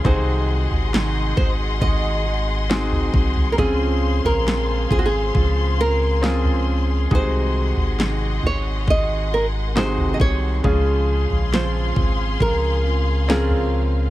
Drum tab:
SD |----o-------o---|----o-------o---|----o-------o---|----o-------o---|
FT |o--o--o-o----o-o|o--o--o-o----o--|o--o--o-o----o--|o--o--o-o----o--|
BD |o-----o-o-----o-|o-----o-o-------|o-------o-----o-|o-----o-o-------|